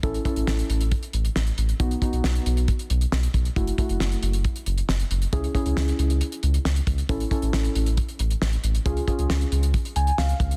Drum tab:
HH |xxxx-xxxxxxx-xxx|xxxx-xxxxxxx-xxx|xxxx-xxxxxxx-xxx|xxxx-xxxxxxx-xxx|
SD |----o-------o---|----o-------o---|----o-------o---|----o-------o---|
BD |o-o-----o-------|o-o-----o-----o-|o-o-----o-------|o-o-----------o-|

HH |xxxx-xxxxxxx-xxx|xxxx-xxxxxxx-xxx|
SD |----o-------o---|----o-------o---|
BD |o-o-----o-------|o-o-----o-----o-|